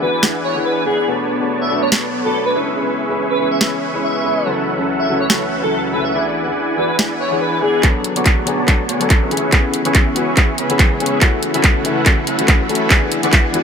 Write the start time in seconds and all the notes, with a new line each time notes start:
Already playing: E3 B3 D4 E4 G#4 B4 D5 F#5 G#5
0.01 E3 B3 D4 F#4 B4
0.22 E3 B3 D4 G#4, snare
0.44 C#5
0.55 E3 B3 D4 G#4
0.65 B4
0.77 B4
0.85 E3 B3 D4 G#4
1.06 F#3 A3 B3 D4 F#4 A4 B4 C#5 D5 A5
1.39 A3 D4 F#4 B4
1.61 E5
1.70 A3 D4 F#4 A4
1.82 C#5
1.91 A3 D4 F#4 B4 C#5, snare
2.24 A3 D4 F#4 A4 B4
2.46 B4
2.54 E3 G#3 C#4 E4 G#4 B4 E5 C#6
2.76 G#3 C#4 E4 B4
3.08 G#3 C#4 E4 B4
3.30 B4
3.39 G#3 C#4 E4 G#4 B4
3.51 E5
3.60 G#3 C#4 E4 B4 E5, snare
3.93 G#3 C#4 E4 B4
4.03 E5
4.23 G#3 C#4 E4 B4
4.44 C#2 C#3 E3 F#3 A3 C#4 E4 F#4 A4 B4 E5 F#5
4.77 C#3 F#3 C#4 E4 A4
4.99 E5
5.08 C#3 F#3 C#4 E4 F#4
5.20 C#5
5.29 C#3 F#3 C#4 E4 A4 C#5, snare
5.62 C#3 F#3 C#4 E4 A4
5.92 C#3 F#3 C#4 E4 A4 B4
6.05 E5
6.13 E3 B3 D4 E4 G#4 B4 D5 E5 F#5 G#5
6.46 E3 B3 D4 G#4
6.77 E3 B3 D4 F#4 B4
6.98 E3 B3 D4 G#4, snare
7.20 C#5
7.31 E3 B3 D4 G#4
7.41 B4
7.53 B4
7.61 E3 B3 D4 G#4
7.82 B1 D3 F#3 A3 B3 D4 F#4 A4 C#5 D5 A5, kick, clap, closed hi-hat
8.04 closed hi-hat
8.15 F#3 B3 D4 F#4 A4 C#5 D5 C#6, closed hi-hat
8.26 kick, clap, closed hi-hat
8.37 B3 F#4 C#5 D5 A5
8.46 F#3 B3 D4 G#4, closed hi-hat
8.67 F#3 B3 D4 A4, kick, clap, closed hi-hat
8.89 B3 F#4 C#5 D5 G#5, closed hi-hat
9.00 F#3 B3 D4 A4, closed hi-hat
9.10 kick, clap, closed hi-hat
9.22 C#4 G#4 B4 E5 C#6
9.30 C#2 C#3 E3 G#3 B3 C#4 E4 G#4, closed hi-hat
9.37 closed hi-hat
9.51 E3 B3 C#4 G#4 E5 C#6, kick, clap, closed hi-hat
9.74 closed hi-hat
9.84 E3 B3 C#4 G#4 B4 E5 C#6, closed hi-hat
9.95 kick, clap, closed hi-hat
10.06 C#4 G#4 B4 E5 C#6
10.15 E3 B3 C#4 F#4, closed hi-hat
10.36 E3 B3 C#4 G#4, kick, clap, closed hi-hat
10.58 C#4 G#4 B4 E5 B5, closed hi-hat
10.69 E3 B3 C#4 G#4, closed hi-hat
10.79 kick, clap, closed hi-hat
10.91 C#4 G#4 B4 E5 C#6
10.99 E3 B3 C#4 G#4, closed hi-hat
11.06 closed hi-hat
11.20 C#2 E3 F#3 A3 C#4 E4 F#4 A4 B4 E5 F#5, kick, clap, closed hi-hat
11.43 closed hi-hat
11.53 E3 A3 C#4 F#4 A4 B4 E5 B5, closed hi-hat
11.64 kick, clap, closed hi-hat
11.75 C#4 A4 B4 E5 F#5
11.84 E3 A3 C#4 E4, closed hi-hat
12.05 E3 A3 C#4 F#4, kick, clap, closed hi-hat
12.27 C#4 A4 B4 E5 F#5, closed hi-hat
12.38 E3 A3 C#4 F#4, closed hi-hat
12.48 kick, clap, closed hi-hat
12.60 C#4 A4 B4 E5 B5
12.68 E3 A3 C#4 F#4, closed hi-hat
12.75 closed hi-hat
12.89 E2 D3 E3 G#3 B3 D4 E4 G#4, kick, clap, closed hi-hat
13.12 closed hi-hat
13.22 E3 B3 D4 E4 G#4 B4 D5 F#5 C#6, closed hi-hat
13.33 kick, clap, closed hi-hat
13.44 E4 B4 D5 F#5 G#5
13.53 E3 B3 D4 F#4, closed hi-hat